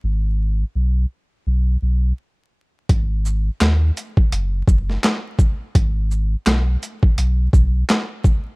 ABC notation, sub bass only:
X:1
M:4/4
L:1/8
Q:"Swing 16ths" 1/4=84
K:G#m
V:1 name="Sub bass" clef=bass
G,,,2 B,,, z B,,, B,,, z2 | G,,,2 D,, z F,,, F,,, z2 | G,,,2 B,,, z B,,, B,,, z2 |]